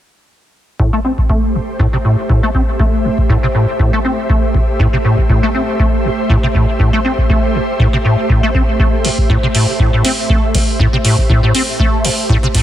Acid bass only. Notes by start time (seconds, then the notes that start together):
0.79 A2
0.93 A3
1.05 C4
1.30 A3
1.55 A2
1.80 A2
1.93 C3
2.05 A2
2.30 A2
2.43 A3
2.55 C4
2.80 A3
3.05 A2
3.30 A2
3.43 C3
3.55 A2
3.80 A2
3.93 A3
4.05 C4
4.30 A3
4.55 A2
4.80 A2
4.93 C3
5.05 A2
5.29 A2
5.43 A3
5.54 C4
5.80 A3
6.05 A2
6.30 A2
6.43 C3
6.55 A2
6.80 A2
6.93 A3
7.05 C4
7.30 A3
7.55 A2
7.80 A2
7.93 C3
8.05 A2
8.30 A2
8.43 A3
8.55 C4
8.80 A3
9.05 A2
9.30 A2
9.43 C3
9.55 A2
9.80 A2
9.93 A2
10.05 C4
10.30 A3
10.55 A2
10.80 A2
10.93 C3
11.04 A2
11.29 A2
11.43 A2
11.55 C4
11.80 A3
12.04 A2
12.30 A2
12.43 C3
12.55 A2